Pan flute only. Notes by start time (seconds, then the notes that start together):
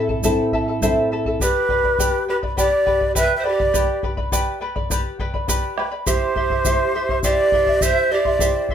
1.42 G4
2.30 G4
2.59 G4
3.17 B4
3.39 C5
3.48 G4
6.07 G4
7.25 G4
7.83 C5
8.13 G4